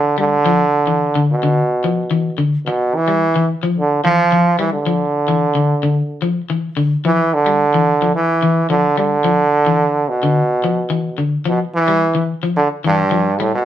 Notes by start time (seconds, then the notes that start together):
Already playing: D3
0.18 D3 G3
0.46 F3
0.87 E3
1.15 D3
1.31 B2
1.43 D3
1.84 F3
2.11 E3
2.38 D3
2.66 B2, muted clean electric guitar stroke
2.95 E3
3.08 G3
3.36 E3
3.63 F3
3.78 D3
4.04 E3 F3
4.32 F3
4.59 E3 G3
4.73 D3
4.86 F3
5.28 E3
5.55 D3
5.83 D3
6.22 F3
6.50 E3
6.77 D3
7.05 E3 F3
7.34 D3
7.46 G3
7.74 E3
8.02 F3
8.15 E3
8.43 E3
8.70 D3 F3
8.97 D3 G3
9.24 F3
9.66 E3
10.09 B2
10.23 D3
10.64 F3
10.90 E3
11.18 D3
11.45 B2 F3
11.75 E3
11.88 G3
12.15 E3
12.43 F3
12.56 D3
12.84 G2 E3
13.11 F3
13.40 A2 G3
13.54 B2